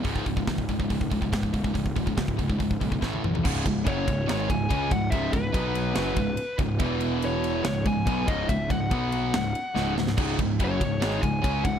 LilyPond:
<<
  \new Staff \with { instrumentName = "Lead electric guitar" } { \time 4/4 \key cis \minor \tempo 4 = 142 r1 | r1 | r4 cis''4 cis''8 gis''4 fis''8 | e''8 b'2. r8 |
r4 cis''4 cis''8 gis''4 dis''8 | e''8 fis''2. r8 | r4 cis''4 cis''8 gis''4 fis''8 | }
  \new Staff \with { instrumentName = "Distorted electric guitar" } { \clef bass \time 4/4 \key cis \minor <cis, gis, cis>8 <cis, gis,>16 <cis, gis,>16 <cis, gis,>8 <cis, gis,>16 <cis, gis,>16 <cis, gis,>8 <cis, gis,>16 <cis, gis,>16 <cis, gis,>8 <cis, gis,>16 <cis, gis,>16 | <cis, gis,>8 <cis, gis,>16 <cis, gis,>16 <cis, gis,>8 <cis, gis,>16 <cis, gis,>16 <cis, gis,>8 <cis, gis,>16 <cis, gis,>16 <a, e a>8 <a, e>16 <a, e>16 | <cis, gis, cis>8 <cis, gis,>8 <fis, cis fis>8 <cis, gis,>8 <gis, dis gis>8 <cis, gis,>8 <cis gis cis'>8 <cis, gis,>8 | <cis, gis, cis>8 <cis, gis,>8 <b, fis b>4 <fis, cis fis>8 <cis, gis,>8 r8 <cis, gis,>8 |
<e, b, e>2 <cis, gis,>8 <cis, gis,>8 <b, fis b>8 <cis, gis, cis>8 | <cis, gis,>8 <cis, gis,>8 <b, fis b>4 <cis, gis,>8 r8 <cis, gis, cis>8 <cis, gis,>8 | <cis, gis, cis>8 <cis, gis,>8 <fis, cis fis>8 <cis, gis,>8 <gis, dis gis>8 <cis, gis,>8 <cis gis cis'>8 <cis, gis,>8 | }
  \new Staff \with { instrumentName = "Distorted electric guitar" } { \clef bass \time 4/4 \key cis \minor <cis, gis, cis>8 <cis, gis,>16 <cis, gis,>16 <cis, gis,>8 <cis, gis,>16 <cis, gis,>16 <cis, gis,>8 <cis, gis,>16 <cis, gis,>16 <cis, gis,>8 <cis, gis,>16 <cis, gis,>16 | <cis, gis,>8 <cis, gis,>16 <cis, gis,>16 <cis, gis,>8 <cis, gis,>16 <cis, gis,>16 <cis, gis,>8 <cis, gis,>16 <cis, gis,>16 <a, e a>8 <a, e>16 <a, e>16 | <cis, gis, cis>8 <cis, gis,>8 <fis, cis fis>8 <cis, gis,>8 <gis, dis gis>8 <cis, gis,>8 <cis gis cis'>8 <cis, gis,>8 | <cis, gis, cis>8 <cis, gis,>8 <b, fis b>4 <fis, cis fis>8 <cis, gis,>8 r8 <cis, gis,>8 |
<e, b, e>2 <cis, gis,>8 <cis, gis,>8 <b, fis b>8 <cis, gis, cis>8 | <cis, gis,>8 <cis, gis,>8 <b, fis b>4 <cis, gis,>8 r8 <cis, gis, cis>8 <cis, gis,>8 | <cis, gis, cis>8 <cis, gis,>8 <fis, cis fis>8 <cis, gis,>8 <gis, dis gis>8 <cis, gis,>8 <cis gis cis'>8 <cis, gis,>8 | }
  \new Staff \with { instrumentName = "Overdriven electric guitar" } { \clef bass \time 4/4 \key cis \minor r1 | r1 | <cis, gis, cis>8 <cis, gis,>8 <fis, cis fis>8 <cis, gis,>8 <gis, dis gis>8 <cis, gis,>8 <cis gis cis'>8 <cis, gis,>8 | <cis, gis, cis>8 <cis, gis,>8 <b, fis b>4 <fis, cis fis>8 <cis, gis,>8 r8 <cis, gis,>8 |
<e, b, e>2 <cis, gis,>8 <cis, gis,>8 <b, fis b>8 <cis, gis, cis>8 | <cis, gis,>8 <cis, gis,>8 <b, fis b>4 <cis, gis,>8 r8 <cis, gis, cis>8 <cis, gis,>8 | <cis, gis, cis>8 <cis, gis,>8 <fis, cis fis>8 <cis, gis,>8 <gis, dis gis>8 <cis, gis,>8 <cis gis cis'>8 <cis, gis,>8 | }
  \new Staff \with { instrumentName = "Picked electric bass" } { \clef bass \time 4/4 \key cis \minor cis,,8 cis,,8 cis,,8 cis,,8 cis,,8 cis,,8 cis,,8 cis,,8 | cis,,8 cis,,8 cis,,8 cis,,8 cis,,8 b,,8 a,,8 b,,8 | cis,,8 cis,,8 fis,,8 cis,,8 gis,,8 cis,,8 cis,8 cis,,8 | cis,,8 cis,,8 b,,4 fis,,8 cis,,8 r8 cis,,8 |
e,,2 cis,,8 cis,,8 b,,8 cis,,8 | cis,,8 cis,,8 b,,4 cis,,8 r8 cis,,8 cis,,8 | cis,,8 cis,,8 fis,,8 cis,,8 gis,,8 cis,,8 cis,8 cis,,8 | }
  \new DrumStaff \with { instrumentName = "Drums" } \drummode { \time 4/4 <hho bd>16 bd16 <hho bd>16 bd16 <hho bd sn>16 bd16 <hho bd>16 bd16 <hho bd>16 bd16 <hho bd>16 bd16 <hho bd sn>16 bd16 <hho bd>16 bd16 | <hho bd>16 bd16 <hho bd>16 bd16 <hho bd sn>16 bd16 <hho bd>16 bd16 <hho bd>16 bd16 <hho bd>16 bd16 <bd sn>16 tommh16 toml16 tomfh16 | <cymc bd>8 <bd cymr>8 <bd cymr>8 <bd cymr>8 <cymr sn>8 <bd cymr>8 <bd cymr>8 <bd cymr>8 | <bd cymr>8 <bd cymr>8 <bd cymr>8 cymr8 <cymr sn>8 <bd cymr>8 cymr8 <bd cymr>8 |
<bd cymr>8 cymr8 cymr8 cymr8 <cymr sn>8 <bd cymr>8 <bd cymr>8 <bd cymr>8 | <bd cymr>8 <bd cymr>8 <bd cymr>8 cymr8 <cymr sn>8 cymr8 sn8 sn16 sn16 | <cymc bd>8 <bd cymr>8 <bd cymr>8 <bd cymr>8 <cymr sn>8 <bd cymr>8 <bd cymr>8 <bd cymr>8 | }
>>